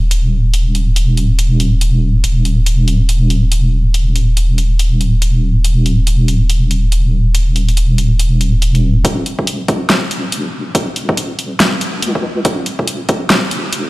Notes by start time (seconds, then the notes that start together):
Already playing: D#1
0.11 closed hi-hat
0.54 closed hi-hat
0.75 closed hi-hat
0.96 closed hi-hat
1.17 closed hi-hat
1.39 closed hi-hat
1.60 closed hi-hat
1.81 closed hi-hat
2.24 D#1, closed hi-hat
2.45 closed hi-hat
2.66 closed hi-hat
2.88 closed hi-hat
3.09 closed hi-hat
3.30 closed hi-hat
3.52 closed hi-hat
3.94 closed hi-hat
4.16 closed hi-hat
4.37 closed hi-hat
4.58 closed hi-hat
4.79 closed hi-hat
5.01 closed hi-hat
5.22 closed hi-hat
5.64 closed hi-hat
5.86 closed hi-hat
6.07 closed hi-hat
6.28 closed hi-hat
6.50 closed hi-hat
6.71 closed hi-hat
6.92 closed hi-hat
7.35 closed hi-hat
7.56 closed hi-hat
7.69 closed hi-hat
7.77 closed hi-hat
7.98 closed hi-hat
8.19 closed hi-hat
8.41 closed hi-hat
8.62 closed hi-hat
8.75 closed hi-hat
9.05 D#1, kick, closed hi-hat
9.26 closed hi-hat
9.39 kick
9.47 D#1, closed hi-hat
9.68 kick, closed hi-hat
9.90 snare, closed hi-hat
10.11 closed hi-hat
10.32 D#1, closed hi-hat
10.75 kick, closed hi-hat
10.96 closed hi-hat
11.09 kick
11.17 closed hi-hat
11.39 closed hi-hat
11.60 D#1, snare, closed hi-hat
11.81 closed hi-hat
12.02 C#2, closed hi-hat
12.15 kick
12.45 D#1, kick, closed hi-hat
12.66 closed hi-hat
12.79 kick
12.87 D#1, closed hi-hat
13.09 kick, closed hi-hat
13.30 snare, closed hi-hat
13.51 closed hi-hat
13.73 D#1, closed hi-hat